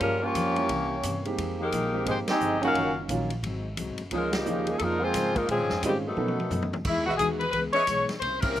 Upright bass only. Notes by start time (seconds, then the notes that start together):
0.01 G2
0.35 F2
0.69 C2
1.04 G2
1.38 F2
1.72 A#1
2.06 G#1
2.28 muted upright bass stroke
2.41 G1
2.74 F#1
3.08 A#1
3.43 G#1
3.77 C2
3.88 G#1
4.00 F#1
4.11 C#2
4.46 D#2
4.80 F2
5.14 G#2
5.48 A#2
5.60 G#2
5.71 F2
5.83 G#2
6.17 B2
6.51 F#2
6.85 E2
6.96 D#2
7.08 B1
7.19 D#2
7.53 C#2
7.75 muted upright bass stroke
7.87 B1
8.09 muted upright bass stroke
8.22 C2
8.55 D2